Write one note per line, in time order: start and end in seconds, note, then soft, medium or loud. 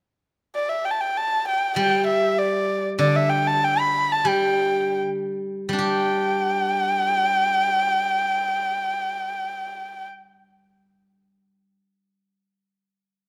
0.55 0.70 D5 medium
0.69 0.86 E5 medium
0.85 0.92 G5 medium
0.91 1.02 A5 soft
1.00 1.19 G5 medium
1.17 1.48 A5 medium
1.48 1.76 G5 medium
1.76 3.61 G3 soft
1.76 2.06 G5 medium
2.07 2.40 E5 medium
2.39 2.85 D5 medium
2.99 4.97 D3 soft
2.99 3.17 D5 medium
3.16 3.31 E5 medium
3.29 3.49 G5 medium
3.47 3.66 A5 medium
3.64 3.81 G5 medium
3.80 4.13 B5 medium
4.12 4.30 A5 medium
4.25 5.68 G3 soft
4.29 4.99 G5 medium
5.69 11.75 G3 soft
5.73 10.49 D4 soft
5.79 10.32 G4 soft
5.79 10.05 G5 medium